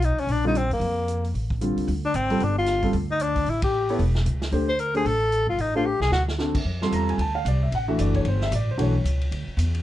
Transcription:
Already playing: upright bass B1
0.02 tenor saxophone D#4, closed hi-hat
0.18 tenor saxophone C#4, open hi-hat
0.27 upright bass A#1, tenor saxophone D4, open hi-hat
0.44 grand piano D3 G3 C4 F4, tenor saxophone D#4
0.55 tenor saxophone C4, closed hi-hat
0.70 upright bass F2, tenor saxophone A#3, open hi-hat
0.80 upright bass F2, open hi-hat
1.08 closed hi-hat
1.24 open hi-hat
1.34 upright bass A1, open hi-hat
1.50 kick
1.61 grand piano D3 G3 C4 F4, closed hi-hat
1.77 upright bass C#2, open hi-hat
1.88 upright bass D2, open hi-hat
2.05 tenor saxophone D4
2.14 upright bass G#1, tenor saxophone C4, closed hi-hat
2.30 grand piano G3 C4 F4 A4, open hi-hat
2.40 upright bass G1, tenor saxophone D4, open hi-hat
2.58 tenor saxophone F4
2.66 snare, closed hi-hat
2.82 grand piano G3 C4 F4 A4, kick, open hi-hat
2.93 upright bass D2, open hi-hat
3.11 tenor saxophone D#4
3.20 tenor saxophone D4, closed hi-hat
3.36 kick, open hi-hat
3.46 upright bass A1, tenor saxophone E4, open hi-hat
3.62 tenor saxophone G4, kick, ride
3.89 grand piano B3 E4 A4 C#5, open hi-hat
3.99 upright bass E1, open hi-hat
4.15 snare
4.26 upright bass C#2, closed hi-hat
4.42 snare, open hi-hat
4.52 upright bass D2, grand piano A3 D4 G4 C5, open hi-hat
4.69 tenor saxophone C5
4.79 tenor saxophone A#4, closed hi-hat
4.94 grand piano A3 D4 G4 C5, tenor saxophone G#4, open hi-hat
5.04 upright bass A1, tenor saxophone A4, open hi-hat
5.32 closed hi-hat
5.47 upright bass G1, tenor saxophone F4
5.57 upright bass A1, tenor saxophone D#4, open hi-hat
5.75 grand piano A3 D4 G4 C5, tenor saxophone F4
5.86 tenor saxophone G4
6.00 upright bass C2, tenor saxophone G#4, snare
6.11 upright bass D2, tenor saxophone F#4, snare
6.28 snare
6.38 grand piano C4 D4 F#4 A4, snare
6.55 kick, crash
6.65 upright bass F2
6.82 grand piano G3 C4 F4 A4 C6, snare
6.92 upright bass E2, grand piano A#5, hi-hat pedal, ride
7.09 grand piano G#5, ride
7.18 upright bass D2, grand piano A5, ride
7.35 grand piano F5
7.45 upright bass C2, grand piano D5, hi-hat pedal, ride
7.63 grand piano E5
7.72 upright bass A1, grand piano F#5, ride
7.88 grand piano E3 A3 D4 F#4 E5
7.98 upright bass F#1, grand piano D5, hi-hat pedal, ride
8.14 grand piano C#5, kick, ride
8.25 upright bass G1, grand piano C5, ride
8.41 grand piano E5, snare
8.51 upright bass A1, grand piano D5, hi-hat pedal, ride
8.71 grand piano C5
8.77 upright bass B1, grand piano E3 A3 D4 F#4 C#5, ride
9.04 upright bass C#2, hi-hat pedal, ride
9.21 ride
9.31 upright bass D2, ride
9.48 muted upright bass stroke
9.57 upright bass E2, hi-hat pedal, ride
9.74 ride

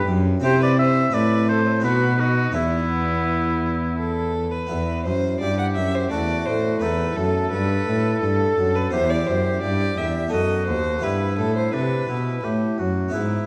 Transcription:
Already playing: harpsichord E4
0.07 cello F#2, harpsichord F#2
0.40 cello C3, harpsichord C3 C4 E4, violin G4
0.44 oboe C5
0.61 violin B4, oboe D5
0.79 violin C5, oboe E5
1.10 cello A2, harpsichord A2 C4 E4, oboe D5
1.14 violin B4
1.49 violin A4, oboe C5
1.80 harpsichord B2 B3 D#4, cello B2, violin F#4
1.84 oboe B4
2.19 violin D#4, oboe F#4
2.51 harpsichord E2 B3 E4, cello E2, violin B3, oboe E4
3.98 violin A4
4.52 violin B4
4.67 harpsichord E2 B3 E4, cello E2
5.05 cello F#2, harpsichord F#2, violin C5
5.41 harpsichord G2, cello G2, oboe G4, violin D5
5.59 violin F#5
5.76 cello F#2, harpsichord F#2, violin E5
5.95 violin C5
6.10 cello E2, harpsichord E2 A3 D4, oboe F#4, violin D5
6.46 cello A2, harpsichord A2, violin C5
6.80 cello E2, harpsichord E2 A3 D#4, oboe A4, violin B4
7.17 cello F#2, harpsichord F#2, violin A4
7.52 cello G2, harpsichord G2, violin B4
7.88 harpsichord A2, cello A2
8.22 harpsichord G2, cello G2, violin A4
8.58 harpsichord F#2, cello F#2
8.75 violin B4
8.91 harpsichord E2 B3 E4, cello E2, oboe G4, violin C5
9.10 violin D5
9.27 harpsichord F#2, cello F#2, violin C5
9.62 harpsichord G2, cello G2, violin D5
9.98 harpsichord E2, cello E2, violin E5
10.28 harpsichord B3 A4
10.33 harpsichord F#2, cello F#2, oboe F#4, violin D#5
10.67 harpsichord D#2, cello D#2, violin C5
10.99 harpsichord B3 E4 G4
11.03 harpsichord G2, cello G2, oboe E4, violin B4
11.38 harpsichord A2, cello A2, violin A4
11.57 violin C5
11.73 harpsichord C3, cello C3, oboe D4, violin B4
12.08 harpsichord B2, cello B2, oboe E4
12.43 harpsichord A2, cello A2, oboe G4
12.78 harpsichord F#2, cello F#2, oboe F#4
13.08 harpsichord B3 E4 B4
13.13 harpsichord G#2, cello G#2, oboe E4

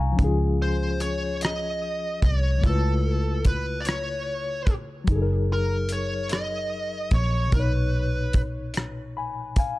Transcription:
Already playing: fingered electric bass C2, analog synth pad D#3 F3 D#4, reed electric piano C4 C#4 F4 D#5 A#5 C#6
0.00 reed electric piano F5 G#5
0.12 reed electric piano F3 C#4
0.19 fingered electric bass C#2, reed electric piano D#4, kick, closed hi-hat
0.24 reed electric piano F4 G#4
0.62 lead electric guitar C5
1.00 lead electric guitar C#5, closed hi-hat
1.41 lead electric guitar D#5, cross-stick, closed hi-hat
2.22 fingered electric bass C2, lead electric guitar C#5, kick, closed hi-hat
2.58 reed electric piano C#3 A3
2.63 fingered electric bass C#2, reed electric piano E4 F4, lead electric guitar A4, kick, closed hi-hat
2.69 reed electric piano B4
3.45 lead electric guitar B4, kick, closed hi-hat
3.80 lead electric guitar D5
3.85 lead electric guitar C#5, cross-stick, closed hi-hat
4.67 kick, closed hi-hat
5.04 fingered electric bass F#1, reed electric piano F#3 D#4, kick, closed hi-hat
5.12 reed electric piano G#4
5.16 reed electric piano A4
5.22 reed electric piano A#4
5.53 lead electric guitar A#4
5.89 lead electric guitar C#5, closed hi-hat
6.29 lead electric guitar D#5, cross-stick, closed hi-hat
7.11 fingered electric bass A#1, lead electric guitar C#5, kick, closed hi-hat
7.48 reed electric piano A#2 B2, closed hi-hat
7.52 fingered electric bass B1, reed electric piano D#4, lead electric guitar B4, kick
7.59 reed electric piano C#5
8.33 kick, closed hi-hat
8.74 cross-stick, closed hi-hat
9.17 reed electric piano G#5 B5
9.56 reed electric piano F5 G#5, kick, closed hi-hat

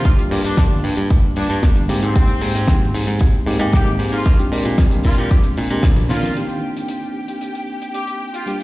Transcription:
Already playing: trumpet section F4
0.05 picked electric bass G1, kick, closed hi-hat
0.18 tine electric piano G3 A#3 D4 F4 G4, closed hi-hat
0.30 picked electric bass G2, tine electric piano G3 A#3 D4 F4 G4, open hi-hat
0.44 picked electric bass G2, trumpet section D4, closed hi-hat
0.57 picked electric bass G1, kick, snare, closed hi-hat
0.84 picked electric bass G2, open hi-hat
0.96 picked electric bass G2, closed hi-hat
1.10 picked electric bass G1, kick, closed hi-hat
1.36 picked electric bass G2, trumpet section D4, open hi-hat
1.50 picked electric bass G2, closed hi-hat
1.63 picked electric bass G1, kick, snare, closed hi-hat
1.76 closed hi-hat
1.88 picked electric bass G#2, tine electric piano G#3 A#3 C4 D#4 G4, open hi-hat
2.02 picked electric bass G#2, trumpet section C4, closed hi-hat
2.16 picked electric bass G#1, kick, closed hi-hat
2.27 closed hi-hat
2.41 picked electric bass G#2, open hi-hat
2.55 picked electric bass G#2, closed hi-hat
2.68 picked electric bass G#1, kick, snare, closed hi-hat
2.94 picked electric bass G#2, open hi-hat
3.07 picked electric bass G#2, closed hi-hat
3.19 picked electric bass G#1, kick, closed hi-hat
3.46 picked electric bass G#2, tine electric piano G#3 A#3 C4 D#4 G4, open hi-hat
3.59 picked electric bass G#2, tine electric piano G#3 A#3 C4 D#4 G4, closed hi-hat
3.72 picked electric bass G#1, trumpet section G4, kick, snare, closed hi-hat
3.86 closed hi-hat
3.99 picked electric bass G#2, open hi-hat
4.12 picked electric bass G#2, trumpet section F4, closed hi-hat
4.25 picked electric bass A#1, kick, closed hi-hat
4.38 tine electric piano G#3 C4 D4 F4 G4, closed hi-hat
4.51 picked electric bass A#2, tine electric piano G#3 C4 D4 F4 G4, open hi-hat
4.65 picked electric bass A#2, closed hi-hat
4.78 picked electric bass A#1, kick, snare, closed hi-hat
4.91 closed hi-hat
5.04 picked electric bass A#2, trumpet section F4, kick, open hi-hat
5.18 picked electric bass A#2, trumpet section G4, closed hi-hat
5.31 picked electric bass A#1, kick, closed hi-hat
5.43 closed hi-hat
5.57 picked electric bass A#2, tine electric piano G#3 C4 D4 F4 A#4, open hi-hat
5.70 picked electric bass A#2, tine electric piano G#3 C4 D4 F4 G4, closed hi-hat
5.83 picked electric bass A#1, kick, snare, closed hi-hat
5.96 closed hi-hat, high tom
6.09 picked electric bass A#2, tine electric piano D#3 A#3 C4 D4 F4, trumpet section F4, snare, open hi-hat
6.23 picked electric bass A#2, snare, closed hi-hat
6.36 tine electric piano A#3 C4 D4 D#4 G4, string section G4 G5, closed hi-hat
6.49 closed hi-hat
6.77 closed hi-hat
6.88 closed hi-hat
7.28 closed hi-hat
7.41 closed hi-hat
7.55 closed hi-hat
7.82 closed hi-hat
7.94 trumpet section G4, closed hi-hat
8.07 closed hi-hat
8.33 trumpet section F4, closed hi-hat
8.46 tine electric piano G3 A#3 D4 F4 G4, closed hi-hat

